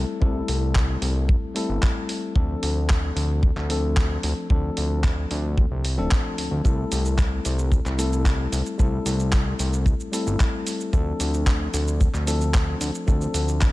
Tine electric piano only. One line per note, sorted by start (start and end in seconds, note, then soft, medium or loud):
0.00 0.18 G3 medium
0.00 0.18 A3 medium
0.00 0.18 C4 medium
0.00 0.19 E4 medium
0.00 0.19 A4 medium
0.20 1.52 G3 medium
0.20 1.52 A3 medium
0.20 1.52 C4 medium
0.20 1.52 E4 medium
0.20 1.53 A4 medium
1.54 2.32 G3 medium
1.54 2.32 A3 medium
1.54 2.33 C4 medium
1.54 2.33 E4 medium
1.54 2.33 A4 medium
2.35 3.66 F3 medium
2.35 3.67 A3 medium
2.35 3.67 C4 medium
2.35 3.67 D4 medium
2.35 3.67 A4 medium
3.69 4.47 F3 medium
3.69 4.47 A3 medium
3.69 4.47 C4 medium
3.69 4.48 D4 medium
3.69 4.48 A4 medium
4.50 5.81 F3 medium
4.50 5.81 A3 medium
4.50 5.81 C4 medium
4.50 5.81 D4 medium
4.50 5.82 A4 medium
5.96 6.61 F3 medium
5.96 6.61 A3 medium
5.96 6.61 C4 medium
5.96 6.62 D4 medium
5.96 6.62 A4 medium
6.63 7.95 G3 medium
6.63 7.95 A3 medium
6.63 7.95 C4 medium
6.63 7.96 E4 medium
6.63 7.96 A4 medium
7.97 8.75 G3 medium
7.97 8.75 A3 medium
7.97 8.76 C4 medium
7.97 8.76 E4 medium
7.97 8.76 A4 medium
8.78 10.09 G3 medium
8.78 10.09 A3 medium
8.78 10.10 C4 medium
8.78 10.10 E4 medium
8.78 10.10 A4 medium
10.12 10.89 G3 medium
10.12 10.90 A3 medium
10.12 10.90 C4 medium
10.12 10.90 E4 medium
10.12 10.90 A4 medium
10.92 12.23 F3 medium
10.92 12.24 A3 medium
10.92 12.24 C4 medium
10.92 12.24 D4 medium
10.92 12.24 A4 medium
12.26 13.04 F3 medium
12.26 13.04 A3 medium
12.26 13.04 C4 medium
12.26 13.04 D4 medium
12.26 13.05 A4 medium
13.07 13.72 F3 medium
13.07 13.72 A3 medium
13.07 13.72 C4 medium
13.07 13.72 D4 medium
13.07 13.72 A4 medium